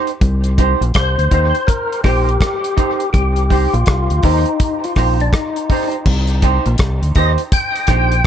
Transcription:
0.07 closed hi-hat
0.21 C2, kick, closed hi-hat
0.44 closed hi-hat
0.58 D#4 G4 C5, kick, closed hi-hat
0.81 A#1, closed hi-hat
0.94 C2 C5, kick, cross-stick, closed hi-hat
1.18 D2, closed hi-hat
1.31 D#2 D#4 G4 C5, kick, closed hi-hat
1.55 closed hi-hat
1.67 A#4, kick, closed hi-hat
1.92 closed hi-hat
2.04 A#1 D#4 G4 C5, kick, cross-stick, open hi-hat
2.29 closed hi-hat
2.41 kick, cross-stick, closed hi-hat
2.64 closed hi-hat
2.77 D#4 G4 C5, kick, closed hi-hat
3.00 closed hi-hat
3.13 C2 G4, kick, closed hi-hat
3.36 closed hi-hat
3.50 D#4 G4 C5, kick, open hi-hat
3.73 A#1 F4, closed hi-hat
3.86 C2, kick, cross-stick, closed hi-hat
4.10 D2, closed hi-hat
4.23 D#2 D#4 G4 C5, kick, open hi-hat
4.46 closed hi-hat
4.60 kick, closed hi-hat
4.84 F4, closed hi-hat
4.96 A#1 D#4 G4 C5, kick, cross-stick, open hi-hat
5.20 D4, closed hi-hat
5.33 D#4, kick, cross-stick, closed hi-hat
5.56 closed hi-hat
5.70 D#4 G4 C5, kick, open hi-hat
5.91 closed hi-hat
6.06 C2, kick, crash
6.27 closed hi-hat
6.42 D#4 G4 C5, kick, closed hi-hat
6.66 A#1, closed hi-hat
6.78 C2, kick, cross-stick, closed hi-hat
7.02 D2, closed hi-hat
7.15 D#2 D#4 G4 C5 D#5, kick, closed hi-hat
7.38 closed hi-hat
7.52 G5, kick, closed hi-hat
7.76 closed hi-hat
7.87 A#1 D#4 G4 C5, kick, cross-stick, closed hi-hat
8.12 closed hi-hat

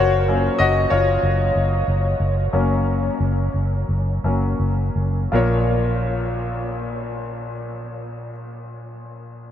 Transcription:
Already playing: F#1 F#4 C#5
0.28 F#3 A#3 C#4
0.59 F#1 F#4 D#5
0.90 F#1 F4 C#5
1.23 F#1
1.56 F#1
1.88 F#1
2.20 F#1
2.53 F#1 F#3 A#3 C#4
3.20 F#1
3.54 F#1
3.89 F#1
4.24 F#1 F#3 A#3 C#4
4.60 F#1
4.96 F#1
5.32 A#1 F4 A#4 C#5

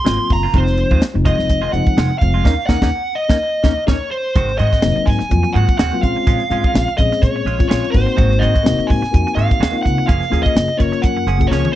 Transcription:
Already playing: C6
0.04 G#1 F#3 A#3 C4 F4, snare, closed hi-hat
0.30 F#1 A#5, muted clean electric guitar stroke, kick, open hi-hat
0.43 A#3 C4 F4
0.53 F1 D#3 F3 G#3 C4 D#4 F4, kick, closed hi-hat
0.57 C5
0.67 muted clean electric guitar stroke, snare
0.78 muted clean electric guitar stroke, closed hi-hat
0.91 D#2 D#3 G#3 C4 F4, kick
1.01 muted upright bass stroke, snare, closed hi-hat
1.13 F1 F3 G#3 C4 D#4, muted clean electric guitar stroke
1.25 D#3 G#3 C4 F4 D#5, kick, closed hi-hat
1.38 F1, muted clean electric guitar stroke, snare
1.49 muted clean electric guitar stroke, kick, closed hi-hat
1.62 D#3 G#3 C4 F4
1.72 F1 F3 G#3 C4 D#4 F#5, muted clean electric guitar stroke, closed hi-hat
1.87 muted upright bass stroke, kick
1.97 F1 D#3 G#3 C4 F4, snare, closed hi-hat
2.10 muted clean electric guitar stroke
2.18 F1 F3 F5, muted clean electric guitar stroke, kick, closed hi-hat
2.22 G#3 C4 F4
2.34 G#3 C4 F4
2.44 D#2 A#3 C#4 D#4, kick, snare
2.67 D#2 A#3 C#4 D#4 F#5, kick, snare
2.82 D#2 A#3 C#4 D#4, kick, snare
3.15 D#5
3.29 D#2 A#3 C#4 D#4, kick, snare
3.63 D#2 A#3 C#4 D#4, kick, snare
3.87 D#2 A#3 C#4 D#4 C#5, kick, snare
4.11 C5
4.36 G#1 D#3 G#3 C4 F#4, kick, closed hi-hat
4.49 closed hi-hat
4.58 G#2 D#3 G#3 C4 F#4 D#5, closed hi-hat
4.72 G#3 C4 F#4, kick, snare, closed hi-hat
4.82 F#1 F#3 A#3 C4 D#4, muted clean electric guitar stroke, snare, closed hi-hat
4.96 muted clean electric guitar stroke, muted upright bass stroke, closed hi-hat
5.05 G#2 G#5, muted clean electric guitar stroke, kick, open hi-hat
5.19 muted clean electric guitar stroke, muted upright bass stroke, snare, closed hi-hat
5.29 F2 F#3 A#3 C4 F4, kick, closed hi-hat
5.43 muted clean electric guitar stroke, closed hi-hat
5.53 G#2 D#3 G#3 C4 F#4 F#5, closed hi-hat
5.68 muted clean electric guitar stroke, kick, closed hi-hat
5.78 D#2 D#3 G#3 C4 F#4 F#5, snare, closed hi-hat
5.92 F#3 A#3 C4 F4
6.02 A#1 G#3 C4 C#4 F4 F5, muted clean electric guitar stroke, kick, closed hi-hat
6.16 muted clean electric guitar stroke
6.27 A#1 G#3 C#4 F4, kick, closed hi-hat
6.40 closed hi-hat
6.50 G#2 G#3 C4 C#4 F4, closed hi-hat
6.64 C#4 F4, kick
6.74 A#1, muted clean electric guitar stroke, snare, closed hi-hat
6.88 muted clean electric guitar stroke, closed hi-hat
6.97 A#1 G#3 C4 C#4 G#4 D#5, muted clean electric guitar stroke, kick, closed hi-hat
7.12 muted clean electric guitar stroke, snare, closed hi-hat
7.22 A#2 C#5, kick, closed hi-hat
7.36 muted clean electric guitar stroke
7.45 A#1 G#3 C#4 F4, closed hi-hat
7.58 G#3 C4 C#4 F4, muted clean electric guitar stroke, kick, closed hi-hat
7.69 A#1 G#3 C#4 F4 C#5, snare, closed hi-hat
7.84 closed hi-hat
7.91 G#1 A#3 C4 D#4 F#4 C5, muted clean electric guitar stroke, kick, open hi-hat
8.06 muted clean electric guitar stroke
8.17 G#1 D#3 G#3 C4 F#4, kick, closed hi-hat
8.33 closed hi-hat
8.39 G#2 D#3 G#3 C4 F#4 D#5, closed hi-hat
8.54 G#3 C4 F#4, kick, closed hi-hat
8.63 F#1 A#3 C4 D#4 F#4, muted clean electric guitar stroke, snare, closed hi-hat
8.79 muted upright bass stroke, muted clean electric guitar stroke, closed hi-hat
8.87 G#2 G#5, muted clean electric guitar stroke, kick, open hi-hat
9.02 muted upright bass stroke, muted clean electric guitar stroke, snare, closed hi-hat
9.11 F2 A#3 C4 D#4 F#4, kick, closed hi-hat
9.27 muted clean electric guitar stroke, closed hi-hat
9.35 G#2 D#3 G#3 C4 F#4 F5
9.39 closed hi-hat
9.50 muted clean electric guitar stroke, kick, closed hi-hat
9.60 D#2 D#3 G#3 C4 F#4, snare, closed hi-hat
9.71 A#3 C4 D#4 F4
9.83 C#2 F#5, muted clean electric guitar stroke, kick
9.87 closed hi-hat
9.98 muted clean electric guitar stroke
10.07 F#1 F3 A#3 C#4 G#4 F5, kick, closed hi-hat
10.23 closed hi-hat
10.30 D#2 F3 A#3 C#4 F4 G#4, closed hi-hat
10.43 A#3 C#4 G#4 D#5, kick
10.55 F#1, muted clean electric guitar stroke, snare, closed hi-hat
10.68 muted clean electric guitar stroke, closed hi-hat
10.77 F#1 A#3 C#4 F4 A#4 C#5, muted clean electric guitar stroke, kick, closed hi-hat
10.92 muted clean electric guitar stroke, closed hi-hat
11.02 F#2 F#5, kick, closed hi-hat
11.17 muted clean electric guitar stroke
11.27 F#1 F3 A#3 C#4 G#4, closed hi-hat
11.38 A#3 C#4 F4 G#4, muted clean electric guitar stroke, kick, closed hi-hat
11.48 C#2 F3 A#3 C#5, snare
11.52 C#4 G#4
11.65 high tom

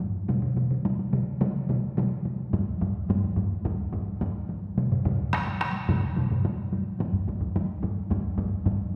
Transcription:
0.00 taiko high
0.15 taiko high
0.28 taiko mid, taiko high
0.42 taiko mid, taiko high
0.56 taiko mid, taiko high
0.71 taiko mid, taiko high
0.85 taiko high
0.99 taiko high
1.13 taiko mid, taiko high
1.28 taiko high
1.41 taiko mid, taiko high
1.56 taiko high
1.69 taiko mid, taiko high
1.84 taiko high
1.97 taiko mid, taiko high
2.12 taiko high
2.25 taiko high
2.40 taiko high
2.53 taiko low-mid, taiko high
2.69 taiko high
2.81 taiko low-mid, taiko high
2.96 taiko high
3.09 taiko low-mid, taiko high
3.24 taiko high
3.37 taiko low-mid, taiko high
3.52 taiko high
3.65 taiko low-mid, taiko high
3.79 taiko high
3.93 taiko low-mid, taiko high
4.08 taiko high
4.21 taiko low-mid, taiko high
4.36 taiko high
4.49 taiko high
4.63 taiko high
4.78 taiko low-mid, taiko mid, taiko high
4.91 taiko low-mid, taiko mid, taiko high
5.05 taiko low-mid, taiko mid, taiko high
5.20 taiko high
5.33 taiko rim, taiko high
5.47 taiko high
5.61 taiko rim, taiko high
5.75 taiko high
5.89 taiko low-mid, taiko mid, taiko high
6.03 taiko high
6.16 taiko low-mid, taiko mid, taiko high
6.30 taiko low-mid, taiko mid, taiko high
6.45 taiko high
6.59 taiko high
6.73 taiko high
6.87 taiko high
6.99 taiko low-mid, taiko high
7.13 taiko low-mid, taiko high
7.27 taiko low-mid, taiko high
7.41 taiko low-mid, taiko high
7.56 taiko high
7.82 taiko low-mid, taiko high
8.10 taiko low-mid, taiko high
8.25 taiko high
8.38 taiko low-mid, taiko high
8.53 taiko high
8.66 taiko low-mid, taiko high
8.81 taiko high

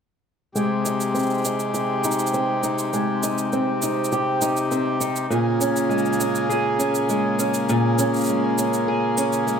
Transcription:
0.55 C3 G#3 G4, cabasa
0.85 D#4, cabasa
1.00 cabasa
1.14 C4, cabasa
1.19 cabasa
1.23 cabasa
1.26 cabasa
1.30 cabasa
1.34 cabasa
1.38 cabasa
1.41 D#4, cabasa
1.45 cabasa
1.59 cabasa
1.74 G4, cabasa
2.04 D#4, cabasa
2.11 cabasa
2.19 cabasa
2.27 cabasa
2.34 C4, cabasa
2.63 D#4, cabasa
2.79 cabasa
2.93 G#3, cabasa
3.23 D#4, cabasa
3.38 cabasa
3.52 C4, cabasa
3.82 D#4, cabasa
4.04 cabasa
4.12 G4, cabasa
4.42 D#4, cabasa
4.57 cabasa
4.71 C4, cabasa
5.00 D#4, cabasa
5.16 cabasa
5.30 A#2 C#3 A#3 G#4, cabasa
5.60 C#4, cabasa
5.76 cabasa
5.89 G#3, cabasa
5.98 cabasa
6.05 cabasa
6.13 cabasa
6.19 C#4, cabasa
6.35 cabasa
6.49 G#4, cabasa
6.79 C#4, cabasa
6.95 cabasa
7.09 G#3, cabasa
7.39 C#4, cabasa
7.54 cabasa
7.69 A#2, cabasa
7.99 C#4, cabasa
8.14 cabasa
8.16 cabasa
8.18 cabasa
8.21 cabasa
8.24 cabasa
8.26 cabasa
8.28 G#3, cabasa
8.58 C#4, cabasa
8.73 cabasa
8.88 G#4
9.17 C#4, cabasa
9.33 cabasa
9.47 G#3, cabasa

